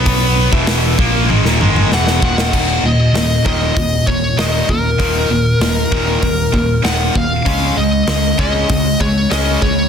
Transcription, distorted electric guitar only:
\new Staff \with { instrumentName = "Distorted electric guitar" } { \clef bass \time 4/4 \key ees \minor \tempo 4 = 97 <b, fis b>8. <fes, ces fes>8. <bes, f bes>8 <aes, ees>16 <ees, bes,>16 <aes, ees aes>8 <fes, ces fes>8 <ees, bes, ees>8 | <ees, bes, ees>8 <ees, bes,>8 <ees, bes,>8 <ees, bes, ees>8 <ees, bes,>8 <ees, bes,>8 <ees, bes, ees>8 <ees, bes,>8 | <ees, bes, ees>8 <ees, bes,>8 <ees, bes,>8 <ees, bes, ees>8 <ees, bes,>8 <ees, bes,>8 <ees, bes, ees>8 <ees, bes,>8 | <des aes des'>8 <des aes>8 <des aes>8 <des aes des'>8 <des aes>8 <des aes>8 <des aes des'>8 <des aes>8 | }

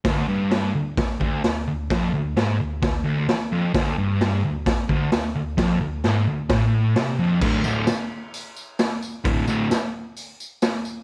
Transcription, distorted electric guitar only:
\new Staff \with { instrumentName = "Distorted electric guitar" } { \clef bass \time 4/4 \key c \lydian \tempo 4 = 130 d,8 g,4 d,8 r8 d,8 d,8 d,8 | f,8 d,8 gis,8 d,8 d,8 d,8 r8 f,8 | d,8 g,4 d,8 r8 d,8 d,8 d,8 | f,8 d,8 gis,8 d,8 a,4 c8 f,8 |
<d, a, d>8 <d, a, d>8 r2. | <d, a, d>8 <d, a, d>8 r2. | }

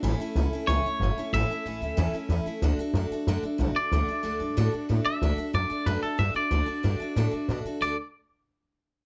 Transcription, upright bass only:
\new Staff \with { instrumentName = "Upright bass" } { \clef bass \time 4/4 \key d \major \tempo 4 = 185 a,,8 r8 cis,8 r8 cis,8 r8 g,,8 r8 | a,,8 r8 a,,8 d,8 e,8 r8 e,8 r8 | d,8 r8 fis,8 r8 fis,8 r8 b,,8 r8 | d,8 r8 d,8 g,8 a,8 r8 a,8 r8 |
d,8 r8 fis,8 r8 fis,8 r8 g,8 r8 | d,8 r8 g,8 r8 a,8 r8 b,8 r8 | d,8 r2. r8 | }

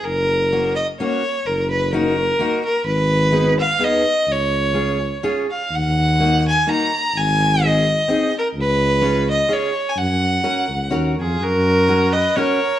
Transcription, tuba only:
\new Staff \with { instrumentName = "Tuba" } { \clef bass \time 3/4 \key fis \major \tempo 4 = 126 fis,,2. | fis,,2. | gis,,2. | cis,2. |
dis,2. | gis,,2. | cis,2. | fis,4. cis,8 dis,8 eis,8 |
fis,2. | }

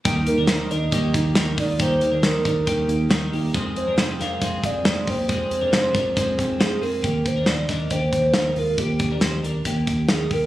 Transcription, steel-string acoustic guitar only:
\new Staff \with { instrumentName = "Steel-string acoustic guitar" } { \clef bass \time 4/4 \key ees \major \tempo 4 = 138 <ees g bes ees'>8 <g bes ees'>8 <ees g bes ees'>8 <g bes ees'>8 <ees g bes ees'>8 <g bes ees'>8 <ees g bes ees'>8 <g bes ees'>8 | <ees g bes ees'>8 <g bes ees'>8 <ees g bes ees'>8 <g bes ees'>8 <ees g bes ees'>8 <g bes ees'>8 <ees g bes ees'>8 <g bes ees'>8 | <f, c f aes c'>8 <f aes c'>8 <f, c f aes c'>8 <f aes c'>8 <c f aes c'>8 <f aes c'>8 <f, c f aes c'>8 <f aes c'>8 | <f, c f aes c'>8 <f aes c'>8 <f, c f aes c'>8 <f aes c'>8 <c f aes c'>8 <f aes c'>8 <f, c f aes c'>8 <f aes c'>8 |
r1 | r1 | }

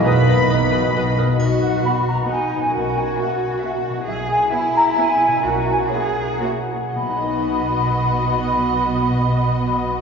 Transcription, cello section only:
\new Staff \with { instrumentName = "Cello section" } { \time 3/4 \key b \major \tempo 4 = 132 b,4 b,4 b,4 | fis'2 dis'4 | fis'2. | gis'4 e'2 |
fis'4 gis'4 fis'8 r8 | b,2.~ | b,2. | }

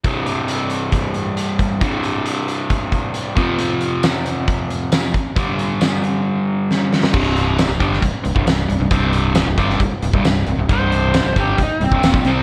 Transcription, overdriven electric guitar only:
\new Staff \with { instrumentName = "Overdriven electric guitar" } { \clef bass \time 4/4 \key f \lydian \tempo 4 = 135 <c, g, c>1 | <c, g, c>2.~ <c, g, c>8 <f, c f>8~ | <f, c f>2.~ <f, c f>8 r8 | <g, d g>1 |
<c, g, c>4~ <c, g, c>16 <c, g,>16 <g, d g>8 <c, g,>16 r16 <c, g,>16 <c, g,>16 <c, g,>8 <c, g,>16 <c, g,>16 | <c, g, c>4~ <c, g, c>16 <c, g,>16 <g, d g>8 <c, g,>16 r16 <c, g,>16 <c, g,>16 <c, g,>8 <c, g,>16 <c, g,>16 | <c, g, c>4~ <c, g, c>16 <c, g,>16 <g, d g>8 <c, g,>16 r16 <c, g,>16 <c, g,>16 <ees, bes,>16 <bes, f>16 <c g c'>8 | }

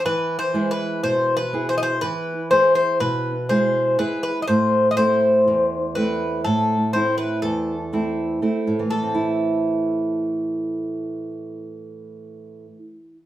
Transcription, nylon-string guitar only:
\new Staff \with { instrumentName = "Nylon-string guitar" } { \time 9/8 \tempo 4. = 41 e8 <gis e' gis'>8 b,8 <b e' gis'>8 e8 <b e' gis'>8 b,8 <gis e' gis'>8 <b e' gis'>8 | a,8 <a c' e'>8 e,8 <a c' e'>8 a,8 <a c' e'>8 e,8 <a c' e'>8 <a c' e'>8 | <a, e a c' e'>1~ <a, e a c' e'>8 | }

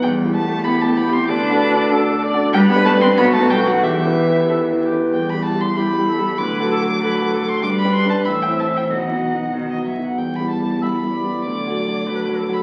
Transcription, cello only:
\new Staff \with { instrumentName = "Cello" } { \clef bass \time 2/4 \key e \minor \tempo 4 = 95 g8 a8 b16 a16 b16 c'16 | d'4. r8 | g16 b16 a16 c'16 b16 a16 g16 fis16 | e4. r8 |
g2 | fis2 | g4 e4~ | e4 dis8 fis8 |
g2 | fis2 | }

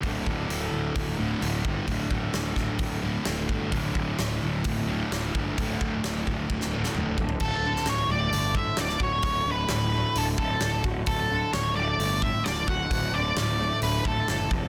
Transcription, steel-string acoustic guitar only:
\new Staff \with { instrumentName = "Steel-string acoustic guitar" } { \clef bass \time 4/4 \key d \major \tempo 4 = 131 <d, a, d>8 <d, a,>8 <d, a,>8 <d, a,>8 <d, a,>8 <d, a,>8 <d, a,>8 <d, a,>8 | <d, a,>8 <d, a,>8 <d, a,>8 <d, a,>8 <d, a,>8 <d, a,>8 <d, a,>8 <d, a,>8 | <d, a,>8 <d, a,>8 <d, a,>8 <d, a,>8 <d, a,>8 <d, a,>8 <d, a,>8 <d, a,>8 | <d, a,>8 <d, a,>8 <d, a,>8 <d, a,>8 <d, a,>8 <d, a,>8 <d, a,>8 <d, a, d>8 |
d,8 d8 a,8 a8 d8 a,8 d8 fis'8 | d,8 d8 a,8 a8 d8 a,8 d8 fis'8 | d,8 d8 a,8 a8 d8 a,8 d8 fis'8 | d,8 d8 a,8 a8 d8 a,8 d8 f,8 | }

